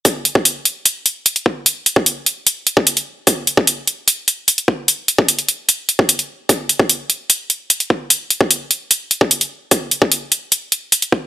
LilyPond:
\new DrumStaff \with { instrumentName = "Drums" } \drummode { \time 4/4 \tempo 4 = 149 <hh bd>8 hh16 bd16 hh8 hh8 hh8 hh8 hh16 hh16 bd8 | hh8 hh16 bd16 hh8 hh8 hh8 hh16 bd16 hh16 hh8. | <hh bd>8 hh16 bd16 hh8 hh8 hh8 hh8 hh16 hh16 bd8 | hh8 hh16 bd16 hh16 hh16 hh8 hh8 hh16 bd16 hh16 hh8. |
<hh bd>8 hh16 bd16 hh8 hh8 hh8 hh8 hh16 hh16 bd8 | hh8 hh16 bd16 hh8 hh8 hh8 hh16 bd16 hh16 hh8. | <hh bd>8 hh16 bd16 hh8 hh8 hh8 hh8 hh16 hh16 bd8 | }